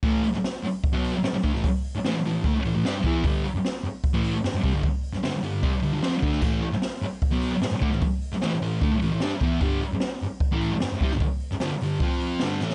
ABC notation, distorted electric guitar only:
X:1
M:4/4
L:1/16
Q:1/4=150
K:Am
V:1 name="Distorted electric guitar" clef=bass
[A,,E,A,]2 z6 z [B,,^F,B,]2 z3 [D,A,] [A,,E,] | z4 [A,,E,] z [A,,E,]2 [D,A,] z [A,,E,] [A,,E,] [G,D] z [E,B,E]2 | [G,,D,G,]2 z6 z [A,,E,A,]2 z3 [C,G,] [G,,D,] | z4 [G,,D,] z [G,,D,]2 [C,G,] z [G,,D,] [G,,D,] [F,C] z [D,A,D]2 |
[A,,E,A,]2 z6 z [B,,^F,B,]2 z3 [D,A,] [A,,E,] | z4 [A,,E,] z [A,,E,]2 [D,A,] z [A,,E,] [A,,E,] [G,D] z [E,B,E]2 | [G,,D,G,]2 z6 z [A,,E,A,]2 z3 [C,G,] [G,,D,] | z4 [G,,D,] z [G,,D,]2 [F,CF]4 [G,,D,G,]2 [A,,E,A,]2 |]